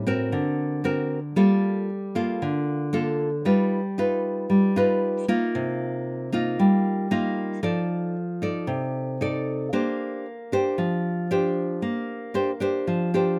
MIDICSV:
0, 0, Header, 1, 2, 480
1, 0, Start_track
1, 0, Key_signature, -2, "major"
1, 0, Tempo, 522648
1, 1259, Time_signature, 4, 2, 24, 8
1, 12299, End_track
2, 0, Start_track
2, 0, Title_t, "Nylon-string guitar"
2, 0, Program_c, 0, 24
2, 0, Note_on_c, 0, 45, 59
2, 60, Note_on_c, 0, 60, 52
2, 65, Note_on_c, 0, 66, 50
2, 69, Note_on_c, 0, 70, 60
2, 277, Note_off_c, 0, 45, 0
2, 297, Note_on_c, 0, 50, 60
2, 742, Note_off_c, 0, 60, 0
2, 742, Note_off_c, 0, 66, 0
2, 745, Note_off_c, 0, 70, 0
2, 771, Note_on_c, 0, 60, 50
2, 777, Note_on_c, 0, 66, 58
2, 781, Note_on_c, 0, 70, 56
2, 1084, Note_off_c, 0, 60, 0
2, 1087, Note_off_c, 0, 66, 0
2, 1089, Note_off_c, 0, 70, 0
2, 1233, Note_off_c, 0, 50, 0
2, 1251, Note_on_c, 0, 58, 47
2, 1252, Note_on_c, 0, 55, 58
2, 1257, Note_on_c, 0, 65, 46
2, 1257, Note_on_c, 0, 69, 54
2, 1731, Note_off_c, 0, 58, 0
2, 1734, Note_off_c, 0, 65, 0
2, 1734, Note_off_c, 0, 69, 0
2, 1976, Note_on_c, 0, 58, 49
2, 1981, Note_on_c, 0, 65, 56
2, 1982, Note_on_c, 0, 69, 53
2, 2190, Note_off_c, 0, 55, 0
2, 2222, Note_on_c, 0, 50, 66
2, 2658, Note_off_c, 0, 58, 0
2, 2659, Note_off_c, 0, 65, 0
2, 2660, Note_off_c, 0, 69, 0
2, 2689, Note_on_c, 0, 58, 58
2, 2694, Note_on_c, 0, 65, 52
2, 2699, Note_on_c, 0, 69, 61
2, 3015, Note_off_c, 0, 58, 0
2, 3018, Note_off_c, 0, 65, 0
2, 3019, Note_off_c, 0, 69, 0
2, 3155, Note_off_c, 0, 50, 0
2, 3170, Note_on_c, 0, 55, 55
2, 3173, Note_on_c, 0, 63, 46
2, 3176, Note_on_c, 0, 65, 46
2, 3178, Note_on_c, 0, 71, 46
2, 3482, Note_off_c, 0, 63, 0
2, 3482, Note_off_c, 0, 65, 0
2, 3486, Note_off_c, 0, 71, 0
2, 3655, Note_on_c, 0, 63, 50
2, 3661, Note_on_c, 0, 65, 49
2, 3665, Note_on_c, 0, 71, 49
2, 4109, Note_off_c, 0, 55, 0
2, 4129, Note_on_c, 0, 55, 55
2, 4336, Note_off_c, 0, 63, 0
2, 4339, Note_off_c, 0, 65, 0
2, 4341, Note_off_c, 0, 71, 0
2, 4373, Note_on_c, 0, 63, 55
2, 4376, Note_on_c, 0, 65, 56
2, 4383, Note_on_c, 0, 71, 60
2, 4816, Note_off_c, 0, 63, 0
2, 4816, Note_off_c, 0, 65, 0
2, 4820, Note_off_c, 0, 71, 0
2, 4849, Note_off_c, 0, 55, 0
2, 4853, Note_on_c, 0, 58, 54
2, 4853, Note_on_c, 0, 63, 59
2, 4857, Note_on_c, 0, 65, 66
2, 5097, Note_on_c, 0, 48, 59
2, 5774, Note_off_c, 0, 63, 0
2, 5775, Note_off_c, 0, 58, 0
2, 5777, Note_off_c, 0, 65, 0
2, 5809, Note_on_c, 0, 58, 49
2, 5814, Note_on_c, 0, 63, 49
2, 5821, Note_on_c, 0, 65, 59
2, 6031, Note_off_c, 0, 48, 0
2, 6056, Note_on_c, 0, 55, 65
2, 6493, Note_off_c, 0, 58, 0
2, 6495, Note_off_c, 0, 63, 0
2, 6499, Note_off_c, 0, 65, 0
2, 6529, Note_on_c, 0, 58, 51
2, 6534, Note_on_c, 0, 63, 57
2, 6535, Note_on_c, 0, 65, 55
2, 6974, Note_off_c, 0, 58, 0
2, 6975, Note_off_c, 0, 63, 0
2, 6976, Note_off_c, 0, 65, 0
2, 6991, Note_off_c, 0, 55, 0
2, 7005, Note_on_c, 0, 53, 60
2, 7006, Note_on_c, 0, 63, 46
2, 7008, Note_on_c, 0, 69, 46
2, 7014, Note_on_c, 0, 74, 52
2, 7486, Note_off_c, 0, 63, 0
2, 7488, Note_off_c, 0, 69, 0
2, 7492, Note_off_c, 0, 74, 0
2, 7731, Note_on_c, 0, 63, 52
2, 7739, Note_on_c, 0, 69, 45
2, 7740, Note_on_c, 0, 74, 56
2, 7947, Note_off_c, 0, 53, 0
2, 7965, Note_on_c, 0, 48, 64
2, 8416, Note_off_c, 0, 63, 0
2, 8418, Note_off_c, 0, 69, 0
2, 8420, Note_off_c, 0, 74, 0
2, 8457, Note_on_c, 0, 63, 51
2, 8466, Note_on_c, 0, 69, 51
2, 8468, Note_on_c, 0, 74, 62
2, 8899, Note_off_c, 0, 63, 0
2, 8901, Note_off_c, 0, 69, 0
2, 8904, Note_off_c, 0, 74, 0
2, 8907, Note_off_c, 0, 48, 0
2, 8934, Note_on_c, 0, 62, 47
2, 8935, Note_on_c, 0, 58, 53
2, 8937, Note_on_c, 0, 67, 52
2, 8940, Note_on_c, 0, 72, 56
2, 9412, Note_off_c, 0, 62, 0
2, 9415, Note_off_c, 0, 67, 0
2, 9415, Note_off_c, 0, 72, 0
2, 9663, Note_on_c, 0, 62, 48
2, 9670, Note_on_c, 0, 67, 52
2, 9671, Note_on_c, 0, 72, 62
2, 9873, Note_off_c, 0, 58, 0
2, 9900, Note_on_c, 0, 53, 65
2, 10344, Note_off_c, 0, 62, 0
2, 10345, Note_off_c, 0, 67, 0
2, 10347, Note_off_c, 0, 72, 0
2, 10385, Note_on_c, 0, 62, 62
2, 10390, Note_on_c, 0, 67, 59
2, 10393, Note_on_c, 0, 72, 54
2, 10836, Note_off_c, 0, 53, 0
2, 10858, Note_on_c, 0, 58, 59
2, 11305, Note_off_c, 0, 62, 0
2, 11307, Note_off_c, 0, 67, 0
2, 11309, Note_off_c, 0, 72, 0
2, 11335, Note_on_c, 0, 62, 49
2, 11339, Note_on_c, 0, 67, 44
2, 11343, Note_on_c, 0, 72, 52
2, 11480, Note_off_c, 0, 62, 0
2, 11480, Note_off_c, 0, 67, 0
2, 11483, Note_off_c, 0, 72, 0
2, 11574, Note_on_c, 0, 62, 54
2, 11583, Note_on_c, 0, 67, 57
2, 11589, Note_on_c, 0, 72, 61
2, 11796, Note_off_c, 0, 58, 0
2, 11823, Note_on_c, 0, 53, 60
2, 12020, Note_off_c, 0, 62, 0
2, 12025, Note_off_c, 0, 67, 0
2, 12026, Note_off_c, 0, 72, 0
2, 12066, Note_on_c, 0, 62, 52
2, 12071, Note_on_c, 0, 67, 51
2, 12078, Note_on_c, 0, 72, 55
2, 12299, Note_off_c, 0, 53, 0
2, 12299, Note_off_c, 0, 62, 0
2, 12299, Note_off_c, 0, 67, 0
2, 12299, Note_off_c, 0, 72, 0
2, 12299, End_track
0, 0, End_of_file